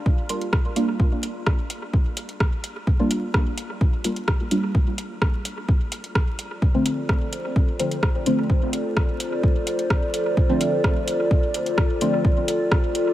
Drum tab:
HH |--xx--x---x---x-|--xx--x---x---x-|--xx--x---x---x-|--xx--x---x---x-|
SD |----r-------r---|----r-------r---|----r-------r---|----r-------r---|
BD |o---o---o---o---|o---o---o---o---|o---o---o---o---|o---o---o---o---|

HH |--xx--x---x---x-|--xx--x---x---x-|--xx--x---x---x-|
SD |----r-------r---|----r-------r---|----r-------r---|
BD |o---o---o---o---|o---o---o---o---|o---o---o---o---|